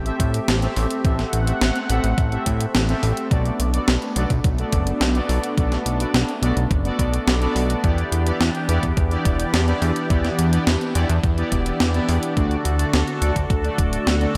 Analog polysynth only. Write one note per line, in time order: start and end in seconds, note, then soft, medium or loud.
0.06 0.59 C4 medium
0.06 0.59 G4 medium
0.06 0.59 A4 medium
0.06 0.59 E5 loud
0.62 1.01 C4 loud
0.62 1.01 G4 medium
0.62 1.01 A4 medium
0.62 1.01 E5 loud
1.05 1.44 C4 medium
1.05 1.44 G4 medium
1.05 1.44 A4 medium
1.05 1.44 E5 medium
1.47 1.60 C4 medium
1.47 1.60 G4 medium
1.47 1.60 A4 medium
1.47 1.60 E5 loud
1.90 2.02 C4 loud
1.90 2.02 G4 medium
1.90 2.02 A4 medium
1.90 2.02 E5 loud
2.32 2.85 C4 medium
2.32 2.85 G4 medium
2.32 2.85 A4 medium
2.32 2.85 E5 loud
2.89 3.28 C4 loud
2.89 3.28 G4 medium
2.89 3.28 A4 medium
2.89 3.28 E5 loud
3.31 3.70 B3 medium
3.31 3.70 F#4 medium
3.31 3.70 A4 medium
3.31 3.70 D5 medium
3.74 3.86 B3 medium
3.74 3.86 F#4 medium
3.74 3.86 A4 medium
3.74 3.86 D5 loud
4.16 4.29 B3 loud
4.16 4.29 F#4 medium
4.16 4.29 A4 medium
4.16 4.29 D5 loud
4.59 5.12 B3 medium
4.59 5.12 F#4 medium
4.59 5.12 A4 medium
4.59 5.12 D5 loud
5.15 5.54 B3 loud
5.15 5.54 F#4 medium
5.15 5.54 A4 medium
5.15 5.54 D5 loud
5.58 5.97 B3 medium
5.58 5.97 F#4 medium
5.58 5.97 A4 medium
5.58 5.97 D5 medium
6.00 6.13 B3 medium
6.00 6.13 F#4 medium
6.00 6.13 A4 medium
6.00 6.13 D5 medium
6.43 6.55 B3 loud
6.43 6.55 F#4 medium
6.43 6.55 A4 medium
6.43 6.55 D5 loud
6.85 7.38 B3 medium
6.85 7.38 F#4 medium
6.85 7.38 A4 medium
6.85 7.38 D5 loud
7.41 7.81 B3 medium
7.41 7.81 F#4 medium
7.41 7.81 A4 medium
7.41 7.81 D5 loud
7.84 8.23 B3 medium
7.84 8.23 E4 medium
7.84 8.23 G4 medium
7.84 8.23 D5 medium
8.26 8.39 B3 medium
8.26 8.39 E4 medium
8.26 8.39 G4 medium
8.26 8.39 D5 loud
8.69 8.82 B3 loud
8.69 8.82 E4 medium
8.69 8.82 G4 medium
8.69 8.82 D5 loud
9.11 9.64 B3 medium
9.11 9.64 E4 medium
9.11 9.64 G4 medium
9.11 9.65 D5 loud
9.68 10.07 B3 medium
9.68 10.07 E4 medium
9.68 10.07 G4 medium
9.68 10.07 D5 loud
10.10 10.49 B3 medium
10.10 10.49 E4 medium
10.10 10.49 G4 medium
10.10 10.49 D5 medium
10.53 10.66 B3 medium
10.53 10.66 E4 medium
10.53 10.66 G4 medium
10.53 10.66 D5 loud
10.95 11.08 B3 loud
10.95 11.08 E4 medium
10.95 11.08 G4 medium
10.95 11.08 D5 loud
11.38 11.91 B3 medium
11.38 11.91 E4 medium
11.38 11.91 G4 medium
11.38 11.91 D5 medium
11.94 12.33 B3 loud
11.94 12.33 E4 medium
11.94 12.33 G4 medium
11.94 12.33 D5 loud
12.37 12.76 A3 medium
12.37 12.76 D4 medium
12.37 12.76 F#4 medium
12.37 12.76 D5 medium
12.79 12.92 A3 medium
12.79 12.92 D4 medium
12.79 12.92 F#4 medium
12.79 12.92 D5 loud
13.22 13.35 A3 medium
13.22 13.35 D4 medium
13.22 13.35 F#4 medium
13.22 13.35 D5 loud
13.64 14.17 A3 medium
13.64 14.17 D4 medium
13.64 14.17 F#4 medium
13.64 14.17 D5 medium
14.21 14.37 A3 loud
14.21 14.37 D4 medium
14.21 14.37 F#4 medium
14.21 14.37 D5 loud